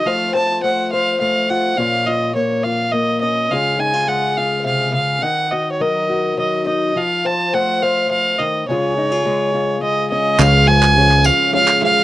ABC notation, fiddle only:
X:1
M:3/4
L:1/16
Q:1/4=104
K:Db
V:1 name="Fiddle"
f2 =a2 g2 f2 f2 g2 | f2 e2 d2 f2 e2 e2 | f2 a2 g2 f2 f2 f2 | g2 e3/2 d/2 e4 e2 e2 |
f2 =a2 g2 f2 f2 e2 | d8 e2 e2 | f2 a4 f2 f2 f2 |]